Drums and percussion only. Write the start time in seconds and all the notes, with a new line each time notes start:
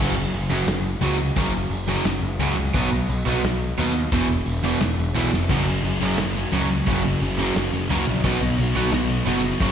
0.34 open hi-hat
0.67 snare, open hi-hat
1.02 open hi-hat
1.36 kick, open hi-hat
1.71 open hi-hat
2.05 snare, open hi-hat
2.39 open hi-hat
2.74 kick, open hi-hat
3.09 open hi-hat
3.44 snare, open hi-hat
3.79 open hi-hat
4.12 kick, open hi-hat
4.46 open hi-hat
4.80 snare, open hi-hat
5.15 open hi-hat
5.33 snare
5.49 kick, crash
5.84 open hi-hat
6.18 snare, open hi-hat
6.52 open hi-hat
6.87 kick, open hi-hat
7.22 open hi-hat
7.56 snare, open hi-hat
7.90 open hi-hat
8.24 kick, open hi-hat
8.58 open hi-hat
8.92 snare, open hi-hat
9.26 open hi-hat
9.60 kick, open hi-hat